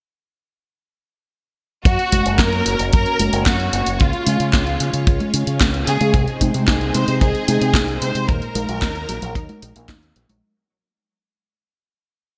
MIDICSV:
0, 0, Header, 1, 6, 480
1, 0, Start_track
1, 0, Tempo, 535714
1, 1663, Time_signature, 4, 2, 24, 8
1, 11089, End_track
2, 0, Start_track
2, 0, Title_t, "Violin section"
2, 0, Program_c, 0, 48
2, 1662, Note_on_c, 0, 66, 103
2, 2109, Note_off_c, 0, 66, 0
2, 2144, Note_on_c, 0, 70, 107
2, 2615, Note_off_c, 0, 70, 0
2, 2625, Note_on_c, 0, 70, 116
2, 3071, Note_off_c, 0, 70, 0
2, 3107, Note_on_c, 0, 66, 97
2, 3585, Note_off_c, 0, 66, 0
2, 3585, Note_on_c, 0, 65, 97
2, 4056, Note_off_c, 0, 65, 0
2, 4067, Note_on_c, 0, 65, 77
2, 4511, Note_off_c, 0, 65, 0
2, 5262, Note_on_c, 0, 68, 110
2, 5709, Note_off_c, 0, 68, 0
2, 5983, Note_on_c, 0, 68, 93
2, 6206, Note_off_c, 0, 68, 0
2, 6224, Note_on_c, 0, 72, 104
2, 6461, Note_on_c, 0, 68, 105
2, 6464, Note_off_c, 0, 72, 0
2, 7146, Note_off_c, 0, 68, 0
2, 7184, Note_on_c, 0, 72, 103
2, 7423, Note_on_c, 0, 70, 109
2, 7424, Note_off_c, 0, 72, 0
2, 8863, Note_off_c, 0, 70, 0
2, 11089, End_track
3, 0, Start_track
3, 0, Title_t, "String machine"
3, 0, Program_c, 1, 50
3, 1662, Note_on_c, 1, 73, 94
3, 1663, Note_on_c, 1, 58, 85
3, 1663, Note_on_c, 1, 61, 77
3, 1664, Note_on_c, 1, 66, 75
3, 3564, Note_off_c, 1, 58, 0
3, 3564, Note_off_c, 1, 61, 0
3, 3564, Note_off_c, 1, 66, 0
3, 3582, Note_on_c, 1, 56, 82
3, 3582, Note_on_c, 1, 61, 74
3, 3582, Note_on_c, 1, 65, 73
3, 5467, Note_off_c, 1, 73, 0
3, 5483, Note_off_c, 1, 61, 0
3, 5483, Note_off_c, 1, 65, 0
3, 5502, Note_on_c, 1, 63, 75
3, 5503, Note_on_c, 1, 60, 76
3, 5503, Note_on_c, 1, 72, 90
3, 7387, Note_off_c, 1, 56, 0
3, 7404, Note_off_c, 1, 60, 0
3, 7404, Note_off_c, 1, 72, 0
3, 7423, Note_on_c, 1, 70, 95
3, 7424, Note_on_c, 1, 54, 86
3, 7424, Note_on_c, 1, 58, 79
3, 9307, Note_off_c, 1, 63, 0
3, 9324, Note_off_c, 1, 54, 0
3, 9324, Note_off_c, 1, 58, 0
3, 9324, Note_off_c, 1, 70, 0
3, 11089, End_track
4, 0, Start_track
4, 0, Title_t, "Synth arpeggio sound"
4, 0, Program_c, 2, 84
4, 5503, Note_on_c, 2, 48, 104
4, 5600, Note_off_c, 2, 48, 0
4, 5743, Note_on_c, 2, 63, 75
4, 5840, Note_off_c, 2, 63, 0
4, 5863, Note_on_c, 2, 56, 74
4, 5977, Note_off_c, 2, 56, 0
4, 5984, Note_on_c, 2, 63, 83
4, 6041, Note_off_c, 2, 63, 0
4, 6224, Note_on_c, 2, 56, 78
4, 6320, Note_off_c, 2, 56, 0
4, 6345, Note_on_c, 2, 56, 94
4, 6441, Note_off_c, 2, 56, 0
4, 6465, Note_on_c, 2, 63, 97
4, 6560, Note_off_c, 2, 63, 0
4, 6705, Note_on_c, 2, 63, 78
4, 6801, Note_off_c, 2, 63, 0
4, 6825, Note_on_c, 2, 60, 76
4, 6921, Note_off_c, 2, 60, 0
4, 6945, Note_on_c, 2, 63, 84
4, 7002, Note_off_c, 2, 63, 0
4, 7184, Note_on_c, 2, 56, 75
4, 7280, Note_off_c, 2, 56, 0
4, 7304, Note_on_c, 2, 56, 102
4, 7400, Note_off_c, 2, 56, 0
4, 7425, Note_on_c, 2, 46, 99
4, 7520, Note_off_c, 2, 46, 0
4, 7665, Note_on_c, 2, 63, 76
4, 7760, Note_off_c, 2, 63, 0
4, 7783, Note_on_c, 2, 54, 73
4, 7897, Note_off_c, 2, 54, 0
4, 7903, Note_on_c, 2, 63, 82
4, 7961, Note_off_c, 2, 63, 0
4, 8143, Note_on_c, 2, 54, 76
4, 8240, Note_off_c, 2, 54, 0
4, 8263, Note_on_c, 2, 54, 98
4, 8360, Note_off_c, 2, 54, 0
4, 8384, Note_on_c, 2, 63, 100
4, 8480, Note_off_c, 2, 63, 0
4, 8623, Note_on_c, 2, 63, 80
4, 8720, Note_off_c, 2, 63, 0
4, 8746, Note_on_c, 2, 58, 76
4, 8841, Note_off_c, 2, 58, 0
4, 8866, Note_on_c, 2, 63, 81
4, 8922, Note_off_c, 2, 63, 0
4, 9104, Note_on_c, 2, 54, 75
4, 9200, Note_off_c, 2, 54, 0
4, 9226, Note_on_c, 2, 54, 103
4, 9321, Note_off_c, 2, 54, 0
4, 11089, End_track
5, 0, Start_track
5, 0, Title_t, "Fingered electric bass"
5, 0, Program_c, 3, 33
5, 1661, Note_on_c, 3, 42, 92
5, 1760, Note_off_c, 3, 42, 0
5, 1905, Note_on_c, 3, 30, 83
5, 2002, Note_off_c, 3, 30, 0
5, 2022, Note_on_c, 3, 30, 91
5, 2121, Note_off_c, 3, 30, 0
5, 2137, Note_on_c, 3, 42, 90
5, 2337, Note_off_c, 3, 42, 0
5, 2383, Note_on_c, 3, 30, 84
5, 2482, Note_off_c, 3, 30, 0
5, 2504, Note_on_c, 3, 30, 85
5, 2602, Note_off_c, 3, 30, 0
5, 2629, Note_on_c, 3, 42, 79
5, 2724, Note_off_c, 3, 42, 0
5, 2863, Note_on_c, 3, 30, 78
5, 2962, Note_off_c, 3, 30, 0
5, 2984, Note_on_c, 3, 30, 96
5, 3082, Note_off_c, 3, 30, 0
5, 3102, Note_on_c, 3, 42, 82
5, 3299, Note_off_c, 3, 42, 0
5, 3343, Note_on_c, 3, 30, 94
5, 3441, Note_off_c, 3, 30, 0
5, 3463, Note_on_c, 3, 30, 88
5, 3561, Note_off_c, 3, 30, 0
5, 3590, Note_on_c, 3, 37, 94
5, 3685, Note_off_c, 3, 37, 0
5, 3823, Note_on_c, 3, 49, 84
5, 3921, Note_off_c, 3, 49, 0
5, 3942, Note_on_c, 3, 49, 95
5, 4041, Note_off_c, 3, 49, 0
5, 4062, Note_on_c, 3, 37, 90
5, 4259, Note_off_c, 3, 37, 0
5, 4302, Note_on_c, 3, 49, 86
5, 4401, Note_off_c, 3, 49, 0
5, 4422, Note_on_c, 3, 49, 87
5, 4521, Note_off_c, 3, 49, 0
5, 4543, Note_on_c, 3, 37, 82
5, 4642, Note_off_c, 3, 37, 0
5, 4781, Note_on_c, 3, 49, 79
5, 4881, Note_off_c, 3, 49, 0
5, 4901, Note_on_c, 3, 49, 94
5, 5001, Note_off_c, 3, 49, 0
5, 5023, Note_on_c, 3, 37, 80
5, 5220, Note_off_c, 3, 37, 0
5, 5261, Note_on_c, 3, 49, 93
5, 5361, Note_off_c, 3, 49, 0
5, 5382, Note_on_c, 3, 49, 85
5, 5481, Note_off_c, 3, 49, 0
5, 5500, Note_on_c, 3, 36, 91
5, 5600, Note_off_c, 3, 36, 0
5, 5743, Note_on_c, 3, 48, 87
5, 5842, Note_off_c, 3, 48, 0
5, 5862, Note_on_c, 3, 48, 95
5, 5961, Note_off_c, 3, 48, 0
5, 5983, Note_on_c, 3, 36, 89
5, 6180, Note_off_c, 3, 36, 0
5, 6222, Note_on_c, 3, 48, 90
5, 6321, Note_off_c, 3, 48, 0
5, 6343, Note_on_c, 3, 48, 89
5, 6441, Note_off_c, 3, 48, 0
5, 6463, Note_on_c, 3, 36, 81
5, 6562, Note_off_c, 3, 36, 0
5, 6702, Note_on_c, 3, 48, 78
5, 6801, Note_off_c, 3, 48, 0
5, 6822, Note_on_c, 3, 48, 97
5, 6921, Note_off_c, 3, 48, 0
5, 6932, Note_on_c, 3, 36, 83
5, 7134, Note_off_c, 3, 36, 0
5, 7181, Note_on_c, 3, 48, 95
5, 7280, Note_off_c, 3, 48, 0
5, 7302, Note_on_c, 3, 48, 86
5, 7401, Note_off_c, 3, 48, 0
5, 7426, Note_on_c, 3, 39, 93
5, 7523, Note_off_c, 3, 39, 0
5, 7663, Note_on_c, 3, 34, 86
5, 7761, Note_off_c, 3, 34, 0
5, 7783, Note_on_c, 3, 34, 93
5, 7882, Note_off_c, 3, 34, 0
5, 7902, Note_on_c, 3, 39, 86
5, 8099, Note_off_c, 3, 39, 0
5, 8144, Note_on_c, 3, 34, 86
5, 8242, Note_off_c, 3, 34, 0
5, 8264, Note_on_c, 3, 34, 89
5, 8362, Note_off_c, 3, 34, 0
5, 8381, Note_on_c, 3, 39, 81
5, 8481, Note_off_c, 3, 39, 0
5, 8625, Note_on_c, 3, 34, 90
5, 8722, Note_off_c, 3, 34, 0
5, 8745, Note_on_c, 3, 34, 94
5, 8842, Note_off_c, 3, 34, 0
5, 8857, Note_on_c, 3, 39, 77
5, 9057, Note_off_c, 3, 39, 0
5, 9104, Note_on_c, 3, 34, 94
5, 9202, Note_off_c, 3, 34, 0
5, 9225, Note_on_c, 3, 34, 77
5, 9322, Note_off_c, 3, 34, 0
5, 11089, End_track
6, 0, Start_track
6, 0, Title_t, "Drums"
6, 1660, Note_on_c, 9, 36, 122
6, 1663, Note_on_c, 9, 42, 53
6, 1750, Note_off_c, 9, 36, 0
6, 1753, Note_off_c, 9, 42, 0
6, 1783, Note_on_c, 9, 42, 27
6, 1873, Note_off_c, 9, 42, 0
6, 1903, Note_on_c, 9, 42, 95
6, 1903, Note_on_c, 9, 63, 76
6, 1905, Note_on_c, 9, 36, 63
6, 1992, Note_off_c, 9, 42, 0
6, 1992, Note_off_c, 9, 63, 0
6, 1994, Note_off_c, 9, 36, 0
6, 2023, Note_on_c, 9, 42, 55
6, 2112, Note_off_c, 9, 42, 0
6, 2137, Note_on_c, 9, 36, 106
6, 2142, Note_on_c, 9, 38, 110
6, 2142, Note_on_c, 9, 39, 100
6, 2142, Note_on_c, 9, 42, 53
6, 2227, Note_off_c, 9, 36, 0
6, 2232, Note_off_c, 9, 38, 0
6, 2232, Note_off_c, 9, 39, 0
6, 2232, Note_off_c, 9, 42, 0
6, 2263, Note_on_c, 9, 42, 26
6, 2352, Note_off_c, 9, 42, 0
6, 2382, Note_on_c, 9, 42, 93
6, 2472, Note_off_c, 9, 42, 0
6, 2503, Note_on_c, 9, 42, 51
6, 2592, Note_off_c, 9, 42, 0
6, 2622, Note_on_c, 9, 42, 53
6, 2629, Note_on_c, 9, 36, 121
6, 2711, Note_off_c, 9, 42, 0
6, 2719, Note_off_c, 9, 36, 0
6, 2742, Note_on_c, 9, 42, 27
6, 2832, Note_off_c, 9, 42, 0
6, 2862, Note_on_c, 9, 42, 98
6, 2862, Note_on_c, 9, 63, 58
6, 2952, Note_off_c, 9, 42, 0
6, 2952, Note_off_c, 9, 63, 0
6, 2983, Note_on_c, 9, 42, 54
6, 3072, Note_off_c, 9, 42, 0
6, 3102, Note_on_c, 9, 36, 124
6, 3102, Note_on_c, 9, 38, 119
6, 3102, Note_on_c, 9, 39, 105
6, 3102, Note_on_c, 9, 42, 56
6, 3191, Note_off_c, 9, 36, 0
6, 3192, Note_off_c, 9, 38, 0
6, 3192, Note_off_c, 9, 39, 0
6, 3192, Note_off_c, 9, 42, 0
6, 3222, Note_on_c, 9, 42, 27
6, 3312, Note_off_c, 9, 42, 0
6, 3342, Note_on_c, 9, 42, 93
6, 3432, Note_off_c, 9, 42, 0
6, 3462, Note_on_c, 9, 42, 56
6, 3552, Note_off_c, 9, 42, 0
6, 3582, Note_on_c, 9, 42, 52
6, 3590, Note_on_c, 9, 36, 121
6, 3671, Note_off_c, 9, 42, 0
6, 3680, Note_off_c, 9, 36, 0
6, 3702, Note_on_c, 9, 42, 25
6, 3792, Note_off_c, 9, 42, 0
6, 3822, Note_on_c, 9, 42, 92
6, 3822, Note_on_c, 9, 63, 75
6, 3911, Note_off_c, 9, 42, 0
6, 3911, Note_off_c, 9, 63, 0
6, 3942, Note_on_c, 9, 42, 52
6, 4032, Note_off_c, 9, 42, 0
6, 4062, Note_on_c, 9, 36, 121
6, 4063, Note_on_c, 9, 38, 117
6, 4063, Note_on_c, 9, 39, 102
6, 4063, Note_on_c, 9, 42, 51
6, 4152, Note_off_c, 9, 36, 0
6, 4152, Note_off_c, 9, 38, 0
6, 4152, Note_off_c, 9, 39, 0
6, 4152, Note_off_c, 9, 42, 0
6, 4183, Note_on_c, 9, 42, 26
6, 4272, Note_off_c, 9, 42, 0
6, 4303, Note_on_c, 9, 42, 91
6, 4392, Note_off_c, 9, 42, 0
6, 4422, Note_on_c, 9, 42, 51
6, 4512, Note_off_c, 9, 42, 0
6, 4543, Note_on_c, 9, 36, 121
6, 4543, Note_on_c, 9, 42, 50
6, 4632, Note_off_c, 9, 42, 0
6, 4633, Note_off_c, 9, 36, 0
6, 4663, Note_on_c, 9, 42, 26
6, 4663, Note_on_c, 9, 63, 57
6, 4752, Note_off_c, 9, 42, 0
6, 4752, Note_off_c, 9, 63, 0
6, 4782, Note_on_c, 9, 42, 94
6, 4871, Note_off_c, 9, 42, 0
6, 4903, Note_on_c, 9, 42, 53
6, 4993, Note_off_c, 9, 42, 0
6, 5023, Note_on_c, 9, 36, 119
6, 5023, Note_on_c, 9, 38, 125
6, 5023, Note_on_c, 9, 39, 106
6, 5023, Note_on_c, 9, 42, 54
6, 5113, Note_off_c, 9, 36, 0
6, 5113, Note_off_c, 9, 38, 0
6, 5113, Note_off_c, 9, 39, 0
6, 5113, Note_off_c, 9, 42, 0
6, 5143, Note_on_c, 9, 42, 27
6, 5233, Note_off_c, 9, 42, 0
6, 5262, Note_on_c, 9, 42, 86
6, 5352, Note_off_c, 9, 42, 0
6, 5382, Note_on_c, 9, 42, 53
6, 5382, Note_on_c, 9, 63, 77
6, 5472, Note_off_c, 9, 42, 0
6, 5472, Note_off_c, 9, 63, 0
6, 5499, Note_on_c, 9, 36, 127
6, 5503, Note_on_c, 9, 42, 50
6, 5589, Note_off_c, 9, 36, 0
6, 5592, Note_off_c, 9, 42, 0
6, 5624, Note_on_c, 9, 42, 25
6, 5713, Note_off_c, 9, 42, 0
6, 5743, Note_on_c, 9, 36, 63
6, 5743, Note_on_c, 9, 42, 88
6, 5743, Note_on_c, 9, 63, 79
6, 5833, Note_off_c, 9, 36, 0
6, 5833, Note_off_c, 9, 42, 0
6, 5833, Note_off_c, 9, 63, 0
6, 5863, Note_on_c, 9, 42, 51
6, 5952, Note_off_c, 9, 42, 0
6, 5983, Note_on_c, 9, 36, 121
6, 5983, Note_on_c, 9, 38, 121
6, 5983, Note_on_c, 9, 39, 101
6, 5983, Note_on_c, 9, 42, 50
6, 6072, Note_off_c, 9, 36, 0
6, 6072, Note_off_c, 9, 38, 0
6, 6072, Note_off_c, 9, 39, 0
6, 6072, Note_off_c, 9, 42, 0
6, 6103, Note_on_c, 9, 42, 25
6, 6193, Note_off_c, 9, 42, 0
6, 6222, Note_on_c, 9, 42, 85
6, 6312, Note_off_c, 9, 42, 0
6, 6343, Note_on_c, 9, 42, 50
6, 6432, Note_off_c, 9, 42, 0
6, 6463, Note_on_c, 9, 36, 108
6, 6463, Note_on_c, 9, 42, 49
6, 6553, Note_off_c, 9, 36, 0
6, 6553, Note_off_c, 9, 42, 0
6, 6583, Note_on_c, 9, 42, 25
6, 6673, Note_off_c, 9, 42, 0
6, 6703, Note_on_c, 9, 42, 92
6, 6703, Note_on_c, 9, 63, 61
6, 6793, Note_off_c, 9, 42, 0
6, 6793, Note_off_c, 9, 63, 0
6, 6823, Note_on_c, 9, 42, 51
6, 6913, Note_off_c, 9, 42, 0
6, 6931, Note_on_c, 9, 36, 127
6, 6943, Note_on_c, 9, 38, 127
6, 6943, Note_on_c, 9, 39, 108
6, 6943, Note_on_c, 9, 42, 52
6, 7021, Note_off_c, 9, 36, 0
6, 7033, Note_off_c, 9, 38, 0
6, 7033, Note_off_c, 9, 39, 0
6, 7033, Note_off_c, 9, 42, 0
6, 7064, Note_on_c, 9, 42, 25
6, 7154, Note_off_c, 9, 42, 0
6, 7184, Note_on_c, 9, 42, 88
6, 7274, Note_off_c, 9, 42, 0
6, 7304, Note_on_c, 9, 42, 51
6, 7393, Note_off_c, 9, 42, 0
6, 7424, Note_on_c, 9, 42, 50
6, 7425, Note_on_c, 9, 36, 123
6, 7513, Note_off_c, 9, 42, 0
6, 7515, Note_off_c, 9, 36, 0
6, 7544, Note_on_c, 9, 42, 24
6, 7633, Note_off_c, 9, 42, 0
6, 7664, Note_on_c, 9, 42, 91
6, 7664, Note_on_c, 9, 63, 84
6, 7753, Note_off_c, 9, 42, 0
6, 7753, Note_off_c, 9, 63, 0
6, 7784, Note_on_c, 9, 42, 49
6, 7873, Note_off_c, 9, 42, 0
6, 7902, Note_on_c, 9, 36, 127
6, 7904, Note_on_c, 9, 38, 115
6, 7904, Note_on_c, 9, 39, 97
6, 7904, Note_on_c, 9, 42, 49
6, 7992, Note_off_c, 9, 36, 0
6, 7993, Note_off_c, 9, 38, 0
6, 7993, Note_off_c, 9, 39, 0
6, 7993, Note_off_c, 9, 42, 0
6, 8024, Note_on_c, 9, 42, 25
6, 8113, Note_off_c, 9, 42, 0
6, 8143, Note_on_c, 9, 42, 87
6, 8232, Note_off_c, 9, 42, 0
6, 8263, Note_on_c, 9, 42, 48
6, 8353, Note_off_c, 9, 42, 0
6, 8381, Note_on_c, 9, 36, 112
6, 8383, Note_on_c, 9, 42, 51
6, 8471, Note_off_c, 9, 36, 0
6, 8473, Note_off_c, 9, 42, 0
6, 8504, Note_on_c, 9, 42, 25
6, 8504, Note_on_c, 9, 63, 58
6, 8593, Note_off_c, 9, 42, 0
6, 8593, Note_off_c, 9, 63, 0
6, 8623, Note_on_c, 9, 42, 90
6, 8713, Note_off_c, 9, 42, 0
6, 8743, Note_on_c, 9, 42, 50
6, 8833, Note_off_c, 9, 42, 0
6, 8858, Note_on_c, 9, 36, 127
6, 8863, Note_on_c, 9, 38, 127
6, 8863, Note_on_c, 9, 39, 101
6, 8863, Note_on_c, 9, 42, 52
6, 8947, Note_off_c, 9, 36, 0
6, 8953, Note_off_c, 9, 38, 0
6, 8953, Note_off_c, 9, 39, 0
6, 8953, Note_off_c, 9, 42, 0
6, 8984, Note_on_c, 9, 42, 26
6, 9073, Note_off_c, 9, 42, 0
6, 9103, Note_on_c, 9, 42, 84
6, 9193, Note_off_c, 9, 42, 0
6, 9224, Note_on_c, 9, 42, 52
6, 9224, Note_on_c, 9, 63, 83
6, 9314, Note_off_c, 9, 42, 0
6, 9314, Note_off_c, 9, 63, 0
6, 11089, End_track
0, 0, End_of_file